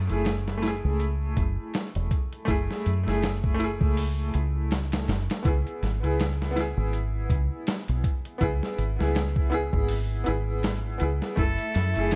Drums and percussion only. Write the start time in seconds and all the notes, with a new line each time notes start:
0.09 closed hi-hat
0.25 snare, closed hi-hat
0.48 snare
0.63 snare, closed hi-hat
1.00 closed hi-hat
1.37 kick, closed hi-hat
1.74 snare, closed hi-hat
1.95 closed hi-hat
2.11 kick, closed hi-hat
2.33 closed hi-hat
2.48 kick, closed hi-hat
2.71 snare
2.86 closed hi-hat
3.08 snare
3.22 snare, closed hi-hat
3.43 kick
3.60 closed hi-hat
3.81 kick
3.97 open hi-hat
4.34 closed hi-hat
4.71 snare, closed hi-hat
4.92 snare, closed hi-hat
5.08 snare, closed hi-hat
5.30 snare, closed hi-hat
5.45 kick, closed hi-hat
5.67 closed hi-hat
5.83 snare, closed hi-hat
6.04 closed hi-hat
6.20 snare, closed hi-hat
6.42 snare
6.57 snare, closed hi-hat
6.94 closed hi-hat
7.30 kick, closed hi-hat
7.67 snare, closed hi-hat
7.88 closed hi-hat
8.04 kick, closed hi-hat
8.25 closed hi-hat
8.41 kick, closed hi-hat
8.63 snare
8.79 closed hi-hat
9.01 snare
9.15 snare, closed hi-hat
9.36 kick
9.52 closed hi-hat
9.73 kick
9.89 open hi-hat
10.26 closed hi-hat
10.63 snare, closed hi-hat
11.00 closed hi-hat
11.22 snare
11.37 kick, closed hi-hat
11.58 closed hi-hat
11.74 snare, closed hi-hat
11.96 closed hi-hat
12.11 snare, closed hi-hat